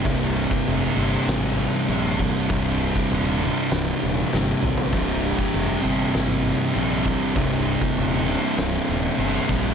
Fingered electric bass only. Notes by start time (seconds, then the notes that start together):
0.05 C1
0.66 F1
0.96 G1
1.27 G#1
1.88 A#1
2.51 C1
3.11 D#1
3.71 C1
4.03 D#1
4.33 G1
4.63 A#1
4.93 C1
5.54 F1
5.84 G1
6.14 G#1
6.76 A#1
7.36 C1
7.97 D#1
8.58 C1
8.89 D#1
9.18 G1
9.49 A#1